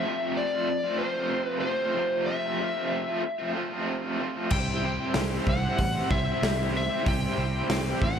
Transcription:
Already playing: E5
0.04 F2 C3 F3 A3 C4
0.08 F4
0.21 F3 A3 C4 F4
0.37 D5
0.53 F3 A3 C4 F4
0.69 muted overdriven electric guitar stroke
0.83 F3 A3 C4 F4
0.98 F3 A3 C5
1.03 C4 F4
1.16 F2 C3 F3 A3 C4 F4
1.46 A3 C4 F4 B4
1.51 F3
1.60 F3 C5
1.65 A3 C4 F4
1.80 F3 A3 C4 F4
1.95 F2 C3 F3 A3 C4 F4
2.26 F3 A3 E5
2.30 C4 F4
2.59 F2 C3 F3 A3 C4 F4
2.74 F3 A3 C4 F4
3.06 F3 A3 C4 F4
3.23 muted overdriven electric guitar stroke
3.39 F3 A3 C4 F4
3.54 F3 A3 C4 F4
3.70 F2 C3 F3 A3 C4 F4
4.01 F3 A3 C4 F4
4.18 F3 A3 C4 F4
4.34 F3 A3 C4 F4
4.49 C2 C3 G3 C4 E4 G4 C5 G5, kick, crash
4.54 G4 C5
4.82 C4 E4 G4 C5
5.13 C2 C3 G3 C4 E4 G4 C5, snare, open hi-hat
5.29 C4 E4 G4 C5
5.47 C2 F#5, kick
5.62 C4 E4 G4 C5
5.78 A1, muted overdriven electric guitar stroke, kick, open hi-hat
5.92 E4 G4 C5
5.96 C4
6.08 C2 C4 E4 G4 C5 E5, kick
6.25 C3 G3 C4 E4 G4 C5
6.42 C2, snare, open hi-hat
6.56 C4 E4 G4 C5
6.71 C4 E4 G4 C5
6.77 E5
6.88 C4 E4 G4 C5
7.03 C2 C3 G3 C4 E4 G4 C5, kick, open hi-hat
7.08 C4 E4 G4 C5 G5
7.36 C2 C4 E4 G4
7.40 C5
7.69 C2 C3 G3 C4 E4 G4 C5, snare, open hi-hat
7.84 C4 E4 G4 C5
8.02 A1 F#5, kick
8.15 C5

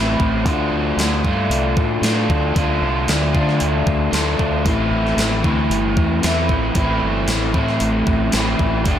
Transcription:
Already playing: A1 A2 E3 A3 C4 E4
0.20 A1, kick
0.45 D2 D3 A3 D4, kick, open hi-hat
0.49 F4
0.71 D2
0.97 D2, snare, open hi-hat
1.24 G2 D3 A3 D4 F4, kick
1.50 C2, open hi-hat
1.77 A2, kick
2.02 A2 D3 A3 D4 F4, snare, open hi-hat
2.29 D2, kick
2.54 D2 D3 A3 D4 F4, kick, open hi-hat
2.81 C2
3.08 D2, snare, open hi-hat
3.33 D3 A3 D4 F4, kick
3.49 snare
3.60 D2, open hi-hat
3.86 D2, kick
4.11 D2 D3 A3 D4 F4, snare, open hi-hat
4.39 D2, kick
4.64 A1 A2 E3 A3 C4 E4, kick, open hi-hat
4.91 A1
5.07 snare
5.17 A1, snare, open hi-hat
5.43 D2 A2 E3 A3 C4 E4, kick
5.70 G1, open hi-hat
5.96 E2, kick
6.22 E2 A2 E3 A3 C4 E4, snare, open hi-hat
6.48 A1, kick
6.74 A1 A2 E3 A3 C4 E4, kick, open hi-hat
7.01 G1
7.28 A1, snare, open hi-hat
7.53 A2 E3 A3 C4 E4, kick
7.68 snare
7.80 A1, open hi-hat
8.07 A1, kick
8.32 A1 A2 E3 A3 C4 E4, snare, open hi-hat
8.59 A1, kick
8.85 G1 G3 A3 D4 G4, kick, open hi-hat

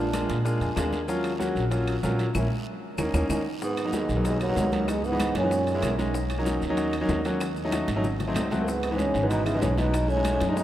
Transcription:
Already playing: A#1 A#2 D4
0.13 G#3 A#3 D4 F4, high bongo, high conga, high timbale, low timbale, short guiro, claves, maracas
0.29 A#2, high bongo, high conga, high timbale, short guiro, maracas
0.45 G#3 A#3 D4 F4, high bongo, high conga, long guiro, maracas
0.60 F2 G#5, high conga, high timbale, maracas
0.76 D#2 G#3 A#3 D4 G#4 F5, high bongo, low bongo, high conga, high timbale, low timbale, short guiro, claves, maracas
0.93 high bongo, high conga, short guiro, maracas
1.08 F#3 A#3 C#4 F4, high bongo, high conga, long guiro, maracas
1.24 high bongo, high conga, high timbale, claves, maracas
1.39 F#3 A#3 C#4 F#4, high bongo, high conga, low timbale, short guiro, maracas
1.55 A#1, high bongo, high conga, short guiro, maracas
1.71 F#3 A#3 C#4 F4, high bongo, high conga, high timbale, long guiro, maracas
1.87 high conga, high timbale, claves, maracas
2.03 A#1 F#3 A#3 C#4 F4, high bongo, low bongo, high conga, low timbale, short guiro, maracas
2.19 high bongo, high timbale, short guiro, maracas
2.35 A#1 A#3 C#4 E4, low bongo, high conga, high timbale, long guiro, claves, maracas
2.98 D#2 A#3 C#4 D#4, low bongo, high conga, high timbale, long guiro, claves, maracas
3.13 D#2 A#3 C#4 D#4, low bongo, high conga, high timbale, long guiro, claves, maracas
3.29 D#2 A#3 C#4 D#4, low bongo, high conga, high timbale, long guiro, claves, maracas
3.62 G#2 B3, high bongo, high conga, long guiro, maracas
3.77 high bongo, high conga, high timbale, claves, maracas
3.85 F#3 A#3 B3 D#4
3.93 D#2 G#3, high bongo, high conga, low timbale, short guiro, maracas
4.09 B1, high bongo, high conga, short guiro, maracas
4.17 F#3 A#3 B3 D#4
4.25 D#2 G#3, high bongo, high conga, high timbale, long guiro, maracas
4.40 D#2 F#3, high conga, high timbale, claves, maracas
4.49 F#3 A#3 B3 D#4
4.56 C#2, high bongo, low bongo, high conga, low timbale, short guiro, maracas
4.72 F#3 A#3 B3 D#4, high bongo, high conga, high timbale, short guiro, maracas
4.88 E2 G#3, high bongo, high conga, high timbale, long guiro, claves, maracas
5.04 G#2 B3, high bongo, high conga, maracas
5.12 E3 G#3 B3 D#4
5.20 high bongo, high conga, high timbale, low timbale, short guiro, claves, maracas
5.35 F#2 A#2 C#4, high bongo, high conga, high timbale, short guiro, maracas
5.43 E3 G#3 B3 D#4
5.51 high bongo, high conga, long guiro, maracas
5.67 high conga, high timbale, maracas
5.75 G#3 A#3 C#4 E4
5.82 B1, high bongo, low bongo, high conga, high timbale, low timbale, short guiro, claves, maracas
5.99 G#3 A#3 C#4 D#4, high bongo, high conga, short guiro, maracas
6.14 high bongo, long guiro, maracas
6.30 high bongo, high conga, high timbale, claves, maracas
6.38 F#3 A#3 C#4 D#4
6.46 high bongo, high conga, low timbale, short guiro, maracas
6.62 D#2, high bongo, high conga, short guiro, maracas
6.70 F#3 A#3 C#4 D#4
6.77 high bongo, high conga, high timbale, long guiro, maracas
6.93 high conga, high timbale, claves, maracas
7.01 F#3 A#3 C#4 D#4
7.08 D#2, high bongo, low bongo, high conga, low timbale, short guiro, maracas
7.25 F#3 A#3 C#4 F#4, high bongo, high timbale, short guiro, maracas
7.40 high bongo, high conga, high timbale, long guiro, claves, maracas
7.56 high bongo, high conga, maracas
7.65 F#3 A3 C#4 D#4
7.72 high bongo, high conga, high timbale, low timbale, short guiro, claves, maracas
7.88 G#1, high conga, high timbale, short guiro, maracas
7.96 F#3 A3 C#4 D#4
8.03 low bongo, high conga, long guiro, maracas
8.20 low bongo, high conga, high timbale, maracas
8.28 F#3 A3 C4 D#4
8.34 C#2, low bongo, high conga, high timbale, low timbale, short guiro, claves, maracas
8.50 F#3 A3 C4 F#4, low bongo, high conga, short guiro, maracas
8.60 F#2 A#3
8.66 G#2 B3, high bongo, high conga, long guiro, maracas
8.83 high bongo, high conga, high timbale, claves, maracas
8.91 E3 G#3 B3 D#4
8.98 G#2 C#4, high bongo, high conga, low timbale, short guiro, maracas
9.14 G#1, high bongo, high conga, short guiro, maracas
9.23 E3 G#3 B3 D#4
9.29 B2 D#4, high bongo, high conga, high timbale, long guiro, maracas
9.45 C#3 E4, high conga, high timbale, claves, maracas
9.55 E3 G#3 B3 D#4
9.60 B1 G#2 C#4, high bongo, low bongo, high conga, low timbale, short guiro, maracas
9.77 B2 E3 G#3 B3 D#4, high conga, high timbale, short guiro, maracas
9.93 high bongo, high timbale, long guiro, claves, maracas
10.09 A2 C#4, high bongo, high conga, maracas
10.17 G#3 A3 C#4 D#4
10.25 high bongo, high conga, high timbale, low timbale, short guiro, claves, maracas
10.40 F#2, high bongo, high conga, high timbale, short guiro, maracas
10.49 A2 G#3 A3 C#4 D4 D#4
10.56 B2 D#4, high bongo, high conga, long guiro, maracas

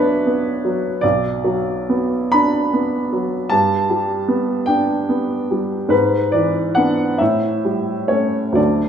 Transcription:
Already playing: B1 F#3 B3 D4 B4 C#5 D5 E5
0.27 B3
0.65 F#3
1.01 B1 D5
1.44 F#3
1.89 B3
2.32 D4 B5
2.73 B3
3.13 F#3
3.50 G2 A5
3.90 G3
4.28 B3
4.66 D4 G5
5.09 B3
5.51 G3
5.89 G#2 B4
6.32 E3 D5
6.75 B3 D4 F#5
7.18 A2 E5
7.65 G3
8.08 A3 C#4 C#5
8.52 D2 F#3 A3 D4 D5

